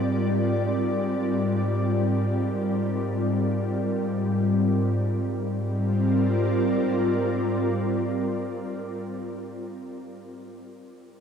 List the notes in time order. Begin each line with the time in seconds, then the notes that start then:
Already playing: G#2 G3 C4 F4 A#4 D5
4.94 G#2
5.06 G3
5.17 C4
5.28 F4
5.41 A#4
5.52 D5